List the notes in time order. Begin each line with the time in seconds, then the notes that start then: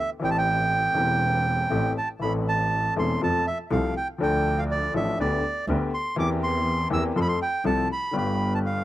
0.00 E5
0.20 A1 A2 E3 A3 C4
0.24 G4 G5
0.31 A5
0.38 G5
0.94 E1 E2 E3 A3 C4 G4
1.70 A1 A2 E3 A3 C4 G4
1.98 A5
2.19 A1 A2 E3 A3 C4 B5
2.24 A4
2.48 A5
2.96 E1 E2 E3 A3 C4 A4 C6
3.21 F2 F3 A3 C4 A4 A5
3.47 E5
3.70 C2 C3 F3 A3 C4 A4 F5
3.97 G5
4.18 D2 D3 F3 A3 D4 A4
4.23 G5
4.59 F5
4.71 D5
4.94 A1 A2 F3 A3 D4 A4 E5
5.19 D2 D3 A3 B3 G4 D5
5.68 D2 D3 A3 B3 G4
5.94 C6
6.16 E2 E3 A#3 C4 G4 D6
6.43 C6
6.90 E2 E3 A#3 C4 G4 E6
7.15 F2 F3 A3 C4 A4 C6
7.21 B5
7.28 C6
7.42 G5
7.64 C2 C3 F3 A3 C4 A4 A5
7.92 B5
8.11 G1 G2 D3 G3 B3
8.16 G4 B5
8.54 A5
8.66 F5